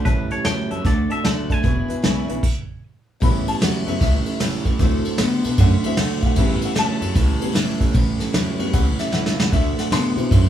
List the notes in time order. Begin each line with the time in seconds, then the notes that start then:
0.04 A1 A2 E3 G3 C#4 G4 A4 B4 C#5 E5 A5, kick, closed hi-hat
0.30 C#4 G4 A4 C#5 E5 A5, muted upright bass stroke, closed hi-hat
0.35 G3
0.44 E2 A2 E3 F#3 G3 C#4 G4 A4 C#5 E5 G5 A5, snare, closed hi-hat
0.70 F#2 A2 F#3 G3 C#4 G4 A4 C#5 E5 A5, closed hi-hat
0.84 D2 D3 A3 C4 F#4 A4 D5 F#5 A5, kick, snare, closed hi-hat
1.09 C4 F#4 A4 D5 E5 F#5 A5, closed hi-hat
1.24 D2 D3 A3 C4 F#4 A4 D5 F#5 A5, snare, closed hi-hat
1.49 F#2 D3 A3 C4 F#4 A4 D5 F#5 G#5 A5, kick, closed hi-hat
1.62 E1 E2 B2 E3 G#3 D4 E4 B4 E5 G#5, kick, closed hi-hat
1.88 D4 E4 B4 E5 G#5, muted upright bass stroke, closed hi-hat
2.02 B1 E2 C#3 E3 G#3 D4 E4 B4 E5 G#5, snare, closed hi-hat
2.28 B1 E2 C#3 D4 E4 B4 E5 G#5, closed hi-hat
2.43 kick, crash
3.20 A1 A2 C#3 E3 G3 B3 C#4 G4 A4 B5, kick, ride
3.46 G3 C#4 G4 A4 A5, muted upright bass stroke, ride
3.60 E2 A2 E3 F#3 G3 C#4 G4 A4, snare, ride
3.64 F#5
3.85 F#2 A2 C#3 F#3 G3 B3 C#4 G4 A4 E5, ride
3.99 C#2 A2 E3 G3 C#4 G4 A4 E5, kick, snare, ride
4.25 G3 C#4 G4 A4, muted upright bass stroke, ride
4.40 A1 A2 E3 G3 C#4 G4 A4, snare, ride
4.65 C#2 A2 E3 G3 C#4 G4 A4, kick, ride
4.79 D2 D3 E3 F#3 A3 C4 F#4 A4, kick, snare, ride
5.05 C4 F#4 A4, ride
5.18 A2 D3 A3 B3 C4 F#4 A4, snare, ride
5.44 B2 D3 B3 C4 F#4 A4, ride
5.58 F#2 D3 A3 C4 F#4 A4 F#5, kick, snare, ride
5.83 E3 F#3 C4 F#4 A4 E5, muted upright bass stroke, ride
5.97 D2 D3 A3 C4 F#4 A4 F#5, snare, ride
6.21 B1 D3 A3 C4 F#4 A4 F5, kick, ride
6.26 F#5
6.35 A1 A2 C#3 E3 G3 B3 C#4 G4 A4, kick, ride
6.40 E5
6.61 G3 C#4 G4 A4, ride
6.65 F#5
6.75 E2 A2 E3 F#3 G3 C#4 G4 A4 A5, snare, ride
7.00 F#2 A2 F#3 G3 C#4 G4 A4, ride
7.13 C#2 A2 E3 G3 C#4 G4 A4, kick, snare, ride
7.39 C#3 G3 B3 C#4 G4 A4, ride
7.53 A1 A2 E3 G3 C#4 G4 A4, snare, ride
7.79 C#2 A2 E3 G3 C#4 G4 A4, kick, ride
7.93 A1 A2 E3 G3 C#4 G4 A4, kick, ride
8.19 G3 C#4 G4 A4, muted upright bass stroke, snare, ride
8.33 E2 A2 E3 F#3 G3 C#4 G4 A4, snare, ride
8.58 F#2 A2 C#3 F#3 G3 B3 C#4 G4 A4, ride
8.71 C#2 A2 E3 G3 C#4 G4 A4 F#5, kick, snare, ride
8.97 G3 C#4 G4 A4 E5, snare, ride
9.11 A1 A2 E3 G3 C#4 G4 A4 F#5, snare
9.26 snare
9.35 C#2 A2 E3 C#4 G4 A4 F5
9.40 G3 F#5, snare
9.50 D2 D3 A3 C4 F#4 A4 E5, kick, snare, ride
9.76 C4 F#4 A4 F#5, muted upright bass stroke, snare, ride
9.90 A2 D3 A3 B3 C4 F#4 A4 C6, snare, ride
10.16 B2 D3 E3 F#3 B3 C4 F#4 A4, ride
10.29 F#2 D3 A3 C4 F#4 A4, kick, ride